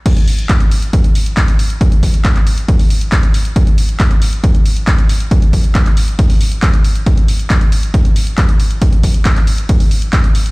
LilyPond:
\new DrumStaff \with { instrumentName = "Drums" } \drummode { \time 4/4 \tempo 4 = 137 <cymc hh bd>16 hh16 hho16 hh16 <hc hh bd>16 hh16 hho16 hh16 <hh bd>16 hh16 hho16 hh16 <hc hh bd>16 hh16 hho16 hh16 | <hh bd>16 hh16 <hho bd>16 hh16 <hc hh bd>16 <hc hh>16 hho16 hh16 <hh bd>16 hho16 hho16 hh16 <hc hh bd>16 hh16 hho16 hh16 | <hh bd>16 hh16 hho16 hh16 <hc hh bd>16 hh16 hho16 hh16 <hh bd>16 hh16 hho16 hh16 <hc hh bd>16 hh16 hho16 hh16 | <hh bd>16 hh16 <hho bd>16 hh16 <hc hh bd>16 <hc hh>16 hho16 hh16 <hh bd>16 hho16 hho16 hh16 <hc hh bd>16 hh16 hho16 hh16 |
<hh bd>16 hh16 hho16 hh16 <hc hh bd>16 hh16 hho16 hh16 <hh bd>16 hh16 hho16 hh16 <hc hh bd>16 hh16 hho16 hh16 | <hh bd>16 hh16 <hho bd>16 hh16 <hc hh bd>16 <hc hh>16 hho16 hh16 <hh bd>16 hho16 hho16 hh16 <hc hh bd>16 hh16 hho16 hh16 | }